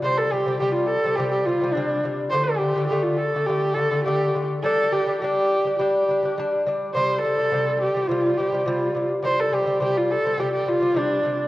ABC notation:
X:1
M:4/4
L:1/16
Q:1/4=104
K:none
V:1 name="Horsehead fiddle"
c A G2 G F A2 G G F2 D3 z | c A G2 G F A2 G2 A2 G3 z | A2 G2 G4 G6 z2 | c2 A4 G2 F2 G3/2 G/2 F3 z |
c A G2 G F A2 G G F2 D3 z |]
V:2 name="Lute" clef=bass
[C,G,]2 [C,G,] [C,G,] [C,G,]2 z [C,G,] [C,G,]2 [C,G,] [C,G,] [C,G,]2 [C,G,]2 | [D,A,]2 [D,A,] [D,A,] [D,A,]2 z [D,A,] [D,A,]2 [D,A,] [D,A,] [D,A,]2 [D,A,]2 | [G,D]2 [G,D] [G,D] [G,D]2 z [G,D] [G,D]2 [G,D] [G,D] [G,D]2 [G,D]2 | [C,G,]2 [C,G,] [C,G,] [C,G,]2 z [C,G,] [C,G,]2 [C,G,] [C,G,] [C,G,]2 [C,G,]2 |
[C,G,]2 [C,G,] [C,G,] [C,G,]2 z [C,G,] [C,G,]2 [C,G,] [C,G,] [C,G,]2 [C,G,]2 |]